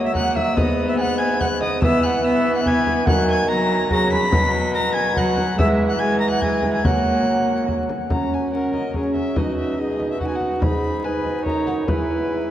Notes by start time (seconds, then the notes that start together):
Already playing: F#3 A#3
0.05 E5 E6
0.14 A#3 F#5 F#6, frame drum
0.36 E5 E6, frame drum
0.56 G#2 B3 D#5 D#6, frame drum
0.88 E5 E6
0.97 G#5 F#6
1.01 F#5
1.18 G#5 G#6
1.40 F#5 F#6, frame drum
1.61 D#5 D#6, frame drum
1.82 E3 B3 E5 E6, frame drum
2.03 F#5 G#5 F#6
2.24 B3 E5 E6
2.55 F#5 F#6
2.65 B3 G#5 G#6, frame drum
2.87 frame drum
3.06 D#3 F#3 F#5 F#6, frame drum
3.27 G#5
3.31 G#6
3.48 F#3 A#5 A#6
3.90 C#3 F#3 A#5 A#6, frame drum
4.12 B5 B6, frame drum
4.32 B2 F#3, frame drum
4.74 A#5 A#6
4.94 G#5 G#6
5.16 F#3 F#5 F#6, frame drum
5.37 frame drum
5.57 E3 G#3 E5 E6, frame drum
5.88 F#5 F#6
5.99 G#3 G#5 G#6
6.19 A#5 A#6
6.30 F#5 F#6
6.41 G#3 G#5 G#6, frame drum
6.63 frame drum
6.73 G#5 G#6
6.84 F#3 A#3 F#5 F#6, frame drum
7.68 frame drum
7.89 frame drum
8.10 F#3 C#4 A#5, frame drum
8.34 G#5
8.53 C#4 A#4 F#5
8.73 D#5, frame drum
8.94 C#4 G#4 C#5, frame drum
9.15 E5, frame drum
9.36 B2 E4 F#4 D#5, frame drum
9.40 D#4
9.58 E5
9.79 D#4 G#4 D#5
10.00 frame drum
10.11 E5
10.20 D#4 F#4 F#5, frame drum
10.27 G#5
10.35 F#5
10.40 frame drum
10.62 G#2 D#4 G#4 B5, frame drum
11.04 D#4 B4 G#5
11.24 frame drum
11.45 F#2 C#5 A#5, frame drum
11.67 F#5, frame drum
11.87 E2 E4 B4 G#5, frame drum